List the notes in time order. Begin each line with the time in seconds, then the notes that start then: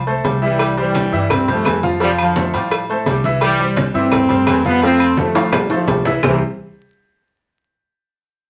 Already playing: C2
0.07 A3 A4 C5, high conga
0.24 C2 G3, high conga, low timbale, low agogo
0.42 E3 G3 E4 E5
0.59 G3, cowbell, high conga, low agogo, claves
0.77 E3 G3 G4 C5, high conga
0.95 cowbell, high conga, low timbale, low agogo
1.12 G2 E3 G3 E4 E5, high conga
1.30 G3 C4, cowbell, high conga, low conga, low agogo, claves
1.48 F3 G3 A3 G4 C5, high conga, low conga, low agogo
1.65 F2 E3, cowbell, high conga, low timbale, low agogo, claves
1.83 F3 F4 F5, high conga
2.00 C3 F3 G3 F4 F5, cowbell, high conga, low agogo
2.18 D3 F3, high conga, low agogo, claves
2.36 A3 A4 C5, cowbell, high conga, low timbale
2.54 A2 F3 G3 F4 F5, cowbell, low agogo
2.71 cowbell, high conga, low agogo, claves
2.89 A3 A4 C5, high conga
3.06 C2 G3, cowbell, high conga, low timbale, low agogo
3.24 E3 E4 E5, cowbell, high conga
3.41 E3 G3, cowbell, high conga, low agogo, claves
3.60 G3 G4 C5, high conga
3.76 cowbell, high conga, low timbale, low agogo
3.94 G2 E3 G3 A3 C4 E4 E5, high conga
4.12 cowbell, high conga, low conga, low agogo, claves
4.29 G3 G4 C5, high conga, low conga, low agogo
4.47 F2 E3, cowbell, high conga, low timbale, low agogo, claves
4.65 F3 G3 B3 F4 F5, high conga
4.82 F3 A3 C4 F4 F5, cowbell, high conga, low agogo
5.00 high conga, low agogo, claves
5.17 F3 A3 A4 C5, cowbell, high conga, low timbale
5.35 A2 F3 G3 F4 F5, cowbell, high timbale, low agogo
5.53 C3 G3, cowbell, low conga, low timbale, low agogo, claves
5.70 D3 F3 A3 A4 C5, high timbale
5.87 C2 G3, cowbell, low conga, low timbale, low agogo
6.05 E3 E4 E5, cowbell, low conga, low timbale
6.23 C2 C3 E3 G3 C4 E4 G4 C5, low bongo, low conga, low timbale, claves